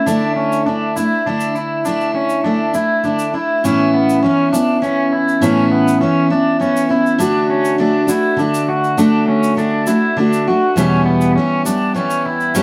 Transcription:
0.06 D3 A3 D4 E4, shaker
0.36 C#4
0.52 shaker
0.66 D3 A3 D4 E4
0.97 A3 D4 E4, shaker
1.26 D3 A3 D4 E4
1.40 shaker
1.55 E4, shaker
1.85 D3 A3 D4 E4, shaker
2.01 shaker
2.15 C#4
2.29 shaker
2.44 D3 A3 D4 E4
2.74 A3 D4 E4, shaker
3.04 D3 A3 D4 E4, shaker
3.19 shaker
3.34 A3 D4 E4
3.64 A2 E3 B3 C#4 E4, shaker
3.94 B3
4.09 shaker
4.23 E3 B3 C#4 E4
4.52 B3 C#4 D4 E4, shaker
4.82 E3 B3 C#4 E4, shaker
5.12 E4
5.28 shaker
5.41 A2 E3 B3 C#4 E4, shaker
5.72 B3
5.88 shaker
6.01 E3 B3 C#4 E4
6.30 B3 C#4 D4 E4
6.60 E3 B3 C#4 E4, shaker
6.77 shaker
6.89 B3 C#4 E4
7.07 shaker
7.18 D3 A3 D4 F#4, shaker
7.50 C#4
7.65 shaker
7.78 D3 A3 D4 F#4
8.07 A3 D4 E4 F#4, shaker
8.37 D3 A3 D4 F#4, shaker
8.54 shaker
8.69 F#4
8.84 shaker
8.97 D3 A3 D4 F#4, shaker
9.28 C#4
9.43 shaker
9.57 D3 A3 D4 F#4, shaker
9.86 A3 D4 E4 F#4, shaker
10.17 D3 A3 D4 F#4
10.33 shaker
10.47 A3 D4 F#4
10.76 E2 B2 E3 G3 B3 C#4 G4, shaker
11.06 B3
11.21 shaker
11.36 E3 G3 B3 C#4 G4
11.65 E3 G3 B3 D4 G4, shaker
11.94 E3 G3 B3 C#4 G4, shaker
12.10 shaker
12.26 E4
12.40 shaker
12.55 E2 B2 E3 G3 B3 C#4 G4, shaker

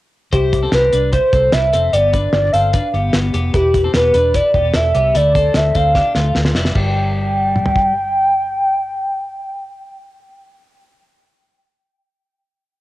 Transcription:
0.32 C2 E4 G4 C5, kick, closed hi-hat
0.53 kick, closed hi-hat
0.63 C4 A4
0.72 C2 C4 G4 B4, snare, closed hi-hat
0.93 C2 D4 B4, closed hi-hat
1.13 E4 C5, kick, closed hi-hat
1.33 C2 C4 A4, kick, closed hi-hat
1.52 C2 E4 B4 E5, snare, closed hi-hat
1.73 F1 C4 A4, closed hi-hat
1.93 G1 B3 G4 D5, closed hi-hat
2.13 D4 B4, kick, closed hi-hat
2.33 G1 D5, snare, closed hi-hat
2.52 G1 C4 A4 F5, closed hi-hat
2.74 D4 B4, kick, closed hi-hat
2.94 G1 B3 G4, closed hi-hat
3.13 G1, snare, closed hi-hat
3.34 F1 B3 G4, closed hi-hat
3.54 E1 E4 G4 B4, kick, closed hi-hat
3.74 kick, closed hi-hat
3.84 C4 A4
3.94 E1 B3 G4 B4, snare, closed hi-hat
4.14 E1 D4 B4, closed hi-hat
4.34 E4 B4 D5, kick, closed hi-hat
4.54 E1 B3 G4, kick, closed hi-hat
4.74 E1 E4 A4 E5, snare, closed hi-hat
4.95 C2 B3 G4, closed hi-hat
5.15 D2 A3 E4 D5, closed hi-hat
5.35 C4 A4, kick, closed hi-hat
5.54 D2 E5, snare, closed hi-hat
5.75 D2 C4 A4 F5, kick, closed hi-hat
5.95 D4 G4, kick, snare
6.15 D2 A3 F4, snare
6.35 D2, snare
6.45 snare
6.55 F1 G3 E4, snare
6.65 snare
6.75 G1 G3 G5, kick, crash
7.56 mid tom
7.66 floor tom
7.76 kick

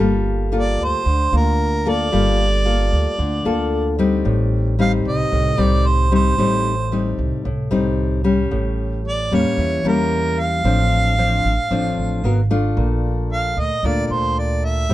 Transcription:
0.00 G1 G3 A#3 F4 A4
0.52 A#3 F4 A4
0.57 D5
0.79 D2
0.84 C5
1.05 D2 D3
1.33 D2 A#3 F4 A#4
1.86 A#3 F4 A4
1.90 D5
2.12 G1 G3 A#3 F4 A4
2.65 A#3 F4 A4
2.93 D2
3.19 D2 D3
3.45 D2 A#3 F4 A4
3.99 G3 C4 D#4
4.25 A1 A2
4.79 G3 C4 D#4 F5
5.05 C2 D#5
5.32 C2 A2
5.58 C2 G3 C4 D#4 D5
5.87 C5
6.12 G3 C4 D#4 C5
6.38 A1 A2 G3 C4 D#4
6.92 G3 C4 D#4
7.18 C2
7.45 C2 A2
7.71 C2 G3 C4 D#4
8.24 G3 C#4
8.51 A1 A2
9.08 D5
9.32 E2 G3 A#3 C#4 C#5
9.58 E2 E3
9.84 E2 G3 A#3 C#4 A#4
10.40 F5
10.64 A1 A2 F3 C4 D4
11.18 F3 C4 D4
11.44 A1
11.71 A1 A2 F3 C4 D4
11.97 A1
12.24 G#1 B3 F#4 A#4
12.51 A3 D4 F4
12.77 A#1 A#2
13.33 F5
13.57 D2 D#5
13.83 D2 A#2 A3 D4 F4 D5
14.06 D2 D5
14.13 C5
14.39 D5
14.65 E5
14.89 A1 A2 G3 C4 E4

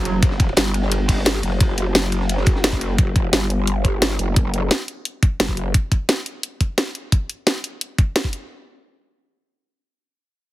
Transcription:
Already playing: F#1 F#4 A4 C#5 A5
0.05 closed hi-hat, ride
0.22 F#1, kick, closed hi-hat, ride
0.31 snare
0.39 kick, closed hi-hat, ride
0.49 ride
0.57 G1, snare, closed hi-hat, ride
0.74 closed hi-hat, ride
0.82 snare
0.92 closed hi-hat, ride
1.08 kick, closed hi-hat, open hi-hat
1.17 snare
1.25 snare, closed hi-hat, ride
1.35 ride
1.43 F#1, closed hi-hat, ride
1.52 ride
1.60 kick, closed hi-hat, ride
1.78 closed hi-hat, ride
1.95 F#1, snare, closed hi-hat, ride
2.12 closed hi-hat, ride
2.21 snare
2.29 closed hi-hat, ride
2.37 snare
2.46 kick, closed hi-hat, ride
2.56 snare
2.64 snare, closed hi-hat, ride
2.73 kick
2.81 closed hi-hat, ride
2.98 F#1, kick, closed hi-hat
3.16 kick, closed hi-hat
3.33 G1, snare, closed hi-hat
3.50 closed hi-hat
3.67 closed hi-hat
3.85 kick, closed hi-hat
4.02 snare, closed hi-hat
4.19 F#1, closed hi-hat
4.36 kick, closed hi-hat
4.54 closed hi-hat
4.71 snare, closed hi-hat
4.88 closed hi-hat
5.05 closed hi-hat
5.23 kick, closed hi-hat
5.40 F#1, snare, closed hi-hat
5.48 kick
5.57 closed hi-hat
5.74 kick, closed hi-hat
5.92 kick, closed hi-hat
6.09 snare, closed hi-hat
6.26 closed hi-hat
6.43 closed hi-hat
6.61 kick, closed hi-hat
6.78 snare, closed hi-hat
6.95 closed hi-hat
7.12 kick, closed hi-hat
7.30 closed hi-hat
7.47 snare, closed hi-hat
7.64 closed hi-hat
7.81 closed hi-hat
7.98 kick, closed hi-hat
8.16 snare, closed hi-hat
8.24 kick
8.33 closed hi-hat

